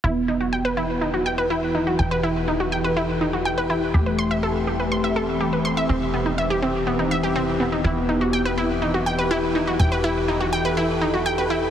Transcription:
<<
  \new Staff \with { instrumentName = "Synth pluck" } { \time 4/4 \key e \minor \tempo 4 = 123 e'16 r16 dis'16 fis'16 g''16 b'16 e'16 r16 dis'16 fis'16 g''16 b'16 e'16 r16 dis'16 fis'16 | g''16 b'16 e'16 r16 dis'16 fis'16 g''16 b'16 e'16 r16 dis'16 fis'16 g''16 b'16 e'16 r16 | g'16 b'16 c'''16 e''16 a'16 r16 g'16 b'16 c'''16 e''16 a'16 r16 g'16 b'16 c'''16 e''16 | c'16 r16 b16 dis'16 e''16 g'16 c'16 r16 b16 dis'16 e''16 g'16 c'16 r16 b16 dis'16 |
e'16 r16 dis'16 fis'16 g''16 b'16 e'16 r16 dis'16 fis'16 g''16 b'16 e'16 r16 dis'16 fis'16 | g''16 b'16 e'16 r16 dis'16 fis'16 g''16 b'16 e'16 r16 dis'16 fis'16 g''16 b'16 e'16 r16 | }
  \new Staff \with { instrumentName = "Ambient pad" } { \time 4/4 \key e \minor << { b'1 | a'1 | r1 | g'1 |
b'1 | a'1 | } \\ { <e e' g'>1~ | <e e' g'>1 | <a c'>1 | <c' e'>1 |
<e e'>1~ | <e e'>1 | } >> }
  \new Staff \with { instrumentName = "Analog polysynth" } { \time 4/4 \key e \minor b2 r2 | r1 | a2 r2 | r1 |
b2 r2 | r1 | }
  \new Staff \with { instrumentName = "Synth drone" } { \clef bass \time 4/4 \key e \minor <e, e>1~ | <e, e>1~ | <e, e>1~ | <e, e>1~ |
<e, e>1~ | <e, e>1 | }
  \new Staff \with { instrumentName = "Analog synth bass" } { \clef bass \time 4/4 \key e \minor e,,1 | e,,1 | e,,1 | e,,1 |
e,,1 | e,,1 | }
>>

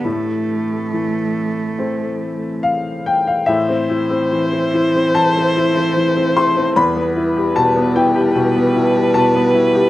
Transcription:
<<
  \new Staff \with { instrumentName = "Viola" } { \time 4/4 \key a \minor \tempo 4 = 72 r1 | c''1 | b'1 | }
  \new Staff \with { instrumentName = "Ambient pad" } { \time 4/4 \key a \minor << { <c' a'>1 | <c' a'>1 | <b g'>1 | } \\ { e1 | e'1~ | e'1 | } >> }
  \new Staff \with { instrumentName = "Grand piano" } { \time 4/4 \key a \minor << { r2. f''8 g''16 f''16 | e''2 a''4. c'''8 | b''4 a''8 g''4 r8 a''4 | } \\ { a,4 e4 c'2 | a,16 c'16 e'16 c'16 e16 c'16 e'16 c'16 e16 c'16 e'16 c'16 e16 c'16 e'16 c'16 | e,16 b16 e'16 g'16 b,16 b16 e'16 g'16 b,16 b16 e'16 g'16 b,16 b16 e'16 g'16 | } >> }
  \new Staff \with { instrumentName = "Cello" } { \clef bass \time 4/4 \key a \minor a2. r4 | e1 | g1 | }
>>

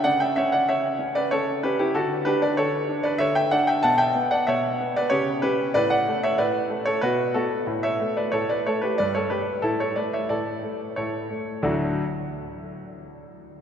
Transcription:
<<
  \new Staff \with { instrumentName = "Grand piano" } { \time 3/4 \key d \major \tempo 4 = 93 <d'' fis''>16 <e'' g''>16 <cis'' e''>16 <d'' fis''>16 <cis'' e''>8. <b' d''>16 <a' cis''>8 <g' b'>16 <e' g'>16 | <fis' a'>8 <g' b'>16 <b' d''>16 <a' cis''>8. <b' d''>16 <cis'' e''>16 <e'' g''>16 <d'' fis''>16 <e'' g''>16 | <fis'' a''>16 <e'' g''>8 <d'' fis''>16 <cis'' e''>8. <b' d''>16 <g' cis''>8 <g' b'>8 | <b' d''>16 <d'' fis''>8 <cis'' e''>16 <b' d''>8. <a' cis''>16 <fis' b'>8 <fis' a'>8 |
r16 <cis'' e''>8 <b' d''>16 <a' cis''>16 <b' d''>16 <a' cis''>16 <g' b'>16 <b' d''>16 <a' cis''>16 <g' b'>8 | <e' a'>16 <a' cis''>16 <b' d''>16 <cis'' e''>16 <a' d''>4 <a' cis''>4 | <d, a, fis a d' fis' d''>8 r2 r8 | }
  \new Staff \with { instrumentName = "Grand piano" } { \clef bass \time 3/4 \key d \major cis8 cis'8 cis8 cis'8 cis8 cis'8 | d8 d'8 d8 d'8 d8 d'8 | b,8 b8 b,8 b8 cis8 cis'8 | a,8 a8 a,8 a8 b,8 b8 |
a,8 a8 a,8 a8 g,8 g8 | a,8 a8 a,8 a8 a,8 a8 | r2. | }
>>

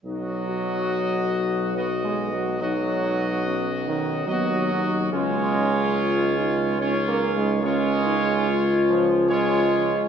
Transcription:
<<
  \new Staff \with { instrumentName = "Trumpet section" } { \time 3/4 \key b \lydian \tempo 4 = 72 <fis' dis''>2 <fis' dis''>4 | <fis' dis''>2 <fis' dis''>4 | <eis' cis''>2 <eis' cis''>4 | <eis' cis''>2 <eis' cis''>4 | }
  \new Staff \with { instrumentName = "French horn section" } { \time 3/4 \key b \lydian dis'8 fis'2~ fis'8 | dis'4 cis'4 b8 dis'8 | cis'4 eis'8 dis'4. | cis'8 dis'8 eis'2 | }
  \new Staff \with { instrumentName = "Trombone section" } { \clef bass \time 3/4 \key b \lydian fis2 \tuplet 3/2 { b8 gis8 fis8 } | fis4. dis8 fis4 | gis2 \tuplet 3/2 { cis'8 ais8 gis8 } | gis4. eis8 gis4 | }
  \new Staff \with { instrumentName = "Tuba" } { \clef bass \time 3/4 \key b \lydian b,,2.~ | b,,2 dis,4 | cis,2.~ | cis,2. | }
>>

